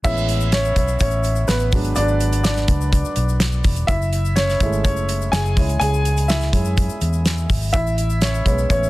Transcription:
0.04 0.73 A1 loud
0.04 0.36 G#3 medium
0.04 0.36 B3 medium
0.04 0.37 C#4 medium
0.04 0.50 E4 medium
0.04 0.54 E5 loud
0.04 kick loud
0.04 crash medium
0.04 shaker medium
0.17 shaker medium
0.29 closed hi-hat medium
0.29 shaker soft
0.41 shaker medium
0.52 0.98 C#4 medium
0.52 0.99 C#5 loud
0.52 snare loud
0.52 closed hi-hat medium
0.52 shaker medium
0.65 shaker soft
0.76 0.99 B1 medium
0.76 kick medium
0.76 closed hi-hat medium
0.76 shaker soft
0.88 shaker medium
0.99 1.45 A1 loud
0.99 1.46 C#4 medium
0.99 1.50 C#5 medium
0.99 kick medium
0.99 closed hi-hat medium
0.99 shaker medium
1.11 shaker soft
1.23 closed hi-hat medium
1.23 shaker medium
1.35 shaker soft
1.48 1.71 A1 medium
1.48 1.94 B3 medium
1.48 1.93 B4 medium
1.48 snare loud
1.48 closed hi-hat loud
1.48 shaker medium
1.59 shaker soft
1.72 1.95 G#1 medium
1.72 2.05 F#3 medium
1.72 2.05 G#3 soft
1.72 1.96 D4 medium
1.72 kick loud
1.72 open hi-hat medium
1.72 shaker medium
1.84 closed hi-hat soft
1.84 shaker soft
1.95 2.65 G#1 loud
1.95 2.42 D4 medium
1.95 2.42 D5 loud
1.95 closed hi-hat medium
1.95 shaker medium
2.08 shaker medium
2.20 closed hi-hat medium
2.20 shaker soft
2.33 closed hi-hat medium
2.33 shaker medium
2.44 3.61 D4 medium
2.44 3.60 D5 medium
2.44 snare loud
2.44 closed hi-hat medium
2.44 shaker medium
2.56 snare soft
2.56 shaker soft
2.68 3.02 C#2 medium
2.68 kick medium
2.68 closed hi-hat medium
2.68 shaker soft
2.81 shaker medium
2.93 kick medium
2.93 closed hi-hat medium
2.93 shaker medium
3.05 shaker medium
3.16 3.62 B1 medium
3.16 closed hi-hat medium
3.16 shaker medium
3.29 shaker soft
3.40 snare loud
3.40 closed hi-hat loud
3.40 shaker medium
3.52 shaker soft
3.64 3.87 E1 medium
3.64 kick medium
3.64 open hi-hat medium
3.64 shaker soft
3.76 closed hi-hat soft
3.76 shaker soft
3.87 4.57 F#1 loud
3.87 4.34 E4 medium
3.87 4.38 E5 loud
3.87 kick loud
3.87 closed hi-hat medium
3.87 shaker medium
4.02 shaker medium
4.13 closed hi-hat medium
4.13 shaker soft
4.25 shaker medium
4.36 4.82 C#4 medium
4.36 4.82 C#5 medium
4.36 snare loud
4.36 closed hi-hat medium
4.36 shaker medium
4.49 snare soft
4.49 shaker soft
4.60 4.85 G#1 medium
4.60 4.93 G#3 medium
4.60 4.93 A3 medium
4.60 4.94 E4 medium
4.60 kick medium
4.60 closed hi-hat medium
4.60 shaker soft
4.73 shaker medium
4.84 5.30 F#1 loud
4.84 5.30 C#4 medium
4.84 5.34 C#5 medium
4.84 kick medium
4.84 closed hi-hat medium
4.84 shaker medium
4.97 shaker soft
5.09 closed hi-hat medium
5.09 shaker soft
5.21 shaker soft
5.32 5.55 F#1 loud
5.32 5.78 G#4 medium
5.32 5.78 G#5 loud
5.32 snare loud
5.32 closed hi-hat loud
5.32 shaker medium
5.46 shaker soft
5.57 5.79 C#2 medium
5.57 5.89 G#3 medium
5.57 5.89 C#4 soft
5.57 5.90 E4 medium
5.57 kick loud
5.57 open hi-hat medium
5.57 shaker medium
5.69 closed hi-hat soft
5.69 shaker soft
5.80 6.50 C#2 loud
5.80 6.26 G#4 medium
5.80 6.30 G#5 loud
5.80 closed hi-hat medium
5.80 shaker medium
5.94 shaker medium
6.05 closed hi-hat medium
6.05 shaker soft
6.17 closed hi-hat medium
6.17 shaker medium
6.28 6.52 E4 medium
6.28 7.45 E5 medium
6.28 snare loud
6.28 closed hi-hat medium
6.28 shaker medium
6.41 snare soft
6.41 shaker soft
6.52 6.87 F#2 medium
6.52 6.75 G#3 soft
6.52 6.75 C#4 soft
6.52 6.75 E4 medium
6.52 kick medium
6.52 closed hi-hat medium
6.52 shaker soft
6.65 shaker medium
6.77 kick loud
6.77 closed hi-hat medium
6.77 shaker medium
6.89 shaker medium
7.01 7.46 E2 medium
7.01 closed hi-hat medium
7.01 shaker medium
7.13 shaker soft
7.26 snare loud
7.26 closed hi-hat loud
7.26 shaker medium
7.37 shaker soft
7.50 7.72 G#1 medium
7.50 kick medium
7.50 open hi-hat medium
7.50 shaker soft
7.62 shaker soft
7.73 8.42 A1 loud
7.73 8.19 E4 medium
7.73 8.23 E5 loud
7.73 kick loud
7.73 closed hi-hat medium
7.73 shaker medium
7.87 shaker medium
7.98 closed hi-hat medium
7.98 shaker medium
8.10 shaker medium
8.21 8.45 C#4 medium
8.21 8.68 C#5 medium
8.21 snare loud
8.21 closed hi-hat medium
8.21 shaker medium
8.34 shaker soft
8.45 8.68 B1 medium
8.45 8.90 G#3 medium
8.45 8.90 B3 soft
8.45 8.70 C#4 medium
8.45 kick medium
8.45 closed hi-hat medium
8.45 shaker soft
8.58 shaker medium
8.70 8.90 A1 loud
8.70 8.90 C#4 medium
8.70 8.90 C#5 medium
8.70 kick medium
8.70 closed hi-hat medium
8.70 shaker medium
8.83 shaker medium

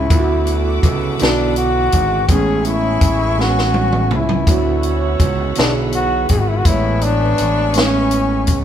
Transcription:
0.00 0.12 A2 medium
0.00 0.12 G#3 medium
0.00 0.11 B3 medium
0.00 0.13 C#4 medium
0.00 0.85 E4 medium
0.10 0.80 D2 loud
0.10 1.01 D3 medium
0.10 1.89 A3 medium
0.10 1.01 B3 medium
0.10 1.89 E4 medium
0.10 1.02 E4 medium
0.10 0.18 F4 medium
0.10 1.89 F#4 medium
0.10 1.89 A4 medium
0.10 2.27 B4 medium
0.10 2.27 E5 medium
0.10 2.27 F#5 medium
0.10 2.27 D6 medium
0.10 kick loud
0.10 closed hi-hat medium
0.20 1.06 F#4 medium
0.47 closed hi-hat soft
0.83 1.17 C#2 medium
0.83 kick loud
0.83 closed hi-hat medium
1.19 1.89 B1 loud
1.19 2.10 D3 medium
1.19 2.11 B3 medium
1.19 1.55 D4 medium
1.19 2.11 E4 medium
1.19 2.12 F#4 medium
1.19 closed hi-hat medium
1.23 snare loud
1.56 2.32 F#4 loud
1.56 closed hi-hat medium
1.92 2.26 G#1 medium
1.92 kick medium
1.92 closed hi-hat medium
2.28 2.98 A1 loud
2.28 3.19 A2 medium
2.28 4.07 G#3 medium
2.28 3.20 G#3 medium
2.28 3.21 B3 medium
2.28 4.07 E4 medium
2.28 4.07 G#4 medium
2.28 2.66 G#4 loud
2.28 4.45 B4 medium
2.28 4.45 E5 medium
2.28 4.45 G#5 medium
2.28 4.45 C#6 medium
2.28 kick loud
2.28 closed hi-hat medium
2.32 3.21 C#4 medium
2.65 3.42 E4 loud
2.65 closed hi-hat medium
3.01 4.14 A1 medium
3.01 kick loud
3.01 closed hi-hat medium
3.38 4.28 A2 medium
3.38 4.29 G#3 medium
3.38 4.30 B3 medium
3.38 4.30 C#4 medium
3.38 4.12 F#4 loud
3.38 snare medium
3.59 snare medium
3.74 high tom medium
3.92 mid tom medium
4.11 4.45 C#2 loud
4.11 5.17 E4 medium
4.11 mid tom loud
4.29 floor tom medium
4.47 5.16 D2 loud
4.47 5.37 D3 medium
4.47 5.38 B3 medium
4.47 6.25 C#4 medium
4.47 5.38 E4 medium
4.47 6.25 F#4 medium
4.47 5.39 F#4 medium
4.47 6.25 A4 medium
4.47 8.64 B4 medium
4.47 6.25 C#5 medium
4.47 6.63 E5 medium
4.47 6.63 F#5 medium
4.47 kick loud
4.47 closed hi-hat medium
4.83 closed hi-hat soft
5.20 5.53 C#2 loud
5.20 kick loud
5.20 closed hi-hat medium
5.55 6.26 B1 medium
5.55 6.47 D3 medium
5.55 6.47 B3 medium
5.55 5.74 D4 medium
5.55 6.48 E4 medium
5.55 closed hi-hat medium
5.59 6.48 G#4 medium
5.59 snare loud
5.92 6.33 F#4 loud
5.92 closed hi-hat medium
6.29 6.63 G#1 medium
6.29 6.42 G#4 medium
6.29 kick medium
6.29 closed hi-hat medium
6.40 6.51 F#4 medium
6.49 6.60 E4 medium
6.58 6.68 F#4 medium
6.64 7.35 A1 loud
6.64 7.56 A2 medium
6.64 7.57 G#3 medium
6.64 8.44 B3 medium
6.64 7.57 B3 medium
6.64 8.44 E4 medium
6.64 7.05 E4 loud
6.64 8.44 G#4 medium
6.64 8.44 B4 medium
6.64 8.64 E5 medium
6.64 8.64 G#5 medium
6.64 8.64 C#6 medium
6.64 kick loud
6.64 closed hi-hat medium
6.69 7.58 C#5 medium
7.01 7.78 D4 loud
7.01 closed hi-hat soft
7.38 8.51 A1 medium
7.38 closed hi-hat medium
7.74 8.64 A2 medium
7.74 8.64 G#3 medium
7.74 8.64 B3 medium
7.74 8.57 C#4 loud
7.74 8.64 C#4 medium
7.74 closed hi-hat medium
7.78 snare loud
8.11 closed hi-hat medium
8.47 8.64 C#2 medium
8.47 kick medium
8.47 closed hi-hat medium

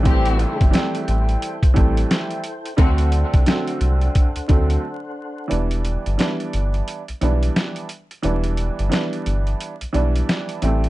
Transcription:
0.00 0.46 A1 loud
0.00 0.68 E3 loud
0.00 0.69 G3 medium
0.00 2.74 E4 medium
0.00 5.47 A4 medium
0.00 2.75 C5 medium
0.00 2.75 G5 medium
0.05 0.52 E3 loud
0.05 0.69 A3 medium
0.05 0.69 C4 loud
0.05 0.52 C4 loud
0.05 0.52 G4 loud
0.05 kick loud
0.05 closed hi-hat medium
0.25 closed hi-hat medium
0.39 closed hi-hat medium
0.61 0.72 G1 medium
0.61 kick loud
0.61 closed hi-hat medium
0.71 1.53 E3 medium
0.71 1.54 G3 medium
0.71 1.54 A3 medium
0.71 1.54 C4 loud
0.71 closed hi-hat loud
0.75 snare loud
0.95 closed hi-hat soft
1.08 1.36 A1 loud
1.08 closed hi-hat medium
1.29 closed hi-hat soft
1.42 closed hi-hat loud
1.63 1.68 A1 soft
1.63 kick loud
1.63 closed hi-hat medium
1.74 2.05 A1 loud
1.74 2.39 E3 loud
1.74 2.39 G3 medium
1.74 2.40 A3 medium
1.74 2.40 C4 loud
1.74 kick medium
1.74 closed hi-hat medium
1.97 closed hi-hat medium
2.11 snare loud
2.11 closed hi-hat medium
2.31 closed hi-hat medium
2.44 closed hi-hat medium
2.66 closed hi-hat medium
2.77 3.24 D2 loud
2.77 3.42 D3 loud
2.77 3.07 D3 loud
2.77 3.42 F#3 medium
2.77 3.42 A3 medium
2.77 3.07 C4 loud
2.77 3.43 C4 loud
2.77 5.48 D4 medium
2.77 3.07 F#4 loud
2.77 5.48 C5 medium
2.77 5.48 F#5 medium
2.77 kick loud
2.77 closed hi-hat medium
2.98 closed hi-hat medium
3.12 closed hi-hat medium
3.34 3.45 C2 medium
3.34 kick loud
3.34 closed hi-hat medium
3.46 4.27 D3 medium
3.46 4.28 F#3 medium
3.46 4.28 A3 medium
3.46 4.28 C4 loud
3.46 snare loud
3.46 closed hi-hat loud
3.67 closed hi-hat medium
3.81 4.09 C2 loud
3.81 closed hi-hat medium
4.01 closed hi-hat soft
4.15 kick medium
4.15 closed hi-hat loud
4.36 4.41 D2 soft
4.36 closed hi-hat medium
4.48 4.78 D2 medium
4.48 4.82 D3 medium
4.48 4.83 F#3 medium
4.48 4.83 A3 medium
4.48 4.84 C4 loud
4.48 kick medium
4.48 closed hi-hat medium
4.70 closed hi-hat medium
5.48 5.97 E1 loud
5.48 6.13 E3 medium
5.48 6.14 G3 medium
5.48 6.14 B3 medium
5.48 6.15 D4 loud
5.48 closed hi-hat medium
5.71 closed hi-hat medium
5.85 closed hi-hat medium
6.06 6.17 G1 medium
6.06 closed hi-hat medium
6.18 6.99 E3 medium
6.18 7.00 G3 medium
6.18 7.00 B3 medium
6.18 7.00 D4 loud
6.18 snare loud
6.18 closed hi-hat loud
6.40 closed hi-hat soft
6.53 6.82 G1 medium
6.53 closed hi-hat medium
6.74 closed hi-hat soft
6.88 closed hi-hat loud
7.08 7.14 B1 soft
7.08 closed hi-hat medium
7.21 7.50 B1 loud
7.21 7.85 E3 medium
7.21 7.86 G3 medium
7.21 7.86 B3 medium
7.21 7.87 D4 loud
7.21 closed hi-hat medium
7.43 closed hi-hat medium
7.56 snare loud
7.56 closed hi-hat medium
7.76 closed hi-hat medium
7.89 closed hi-hat medium
8.11 closed hi-hat soft
8.23 8.70 E1 loud
8.23 8.87 E3 loud
8.23 8.88 G3 medium
8.23 8.88 B3 medium
8.23 8.88 D4 loud
8.23 closed hi-hat medium
8.44 closed hi-hat medium
8.57 closed hi-hat medium
8.79 8.90 G1 medium
8.79 closed hi-hat medium
8.89 9.71 E3 medium
8.89 9.72 G3 medium
8.89 9.72 B3 medium
8.89 9.73 D4 loud
8.89 snare loud
8.89 closed hi-hat loud
9.13 closed hi-hat medium
9.26 9.55 G1 medium
9.26 closed hi-hat medium
9.47 closed hi-hat soft
9.61 closed hi-hat loud
9.81 9.87 B1 soft
9.81 closed hi-hat medium
9.93 10.23 B1 medium
9.93 10.57 E3 loud
9.93 10.58 G3 medium
9.93 10.58 B3 medium
9.93 10.59 D4 loud
9.93 closed hi-hat medium
10.16 closed hi-hat medium
10.29 snare loud
10.29 closed hi-hat medium
10.49 closed hi-hat medium
10.62 10.89 A1 loud
10.62 10.89 E3 medium
10.62 10.89 G3 medium
10.62 10.89 A3 medium
10.62 10.89 C4 loud
10.62 closed hi-hat medium
10.84 closed hi-hat soft

